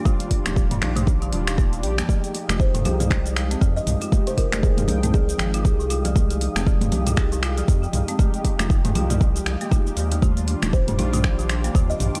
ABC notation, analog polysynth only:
X:1
M:4/4
L:1/16
Q:"Swing 16ths" 1/4=118
K:Fdor
V:1 name="Analog polysynth"
[G,DF]6 [G,DF]4 [G,DF]4 [G,DG]2 | [A,EG]6 [A,EG]8- [A,EG]2 | [A,EG]6 [A,Eg]4- [A,Eg] [A,EG]4- [A,EG] | [A,EG]6 [A,EG]8- [A,EG]2 |
[A,EG]6 [A,EG]4- [A,EG] [A,EG]4- [A,EG] | [G,DF]6 [G,DF]8- [G,DF]2 |]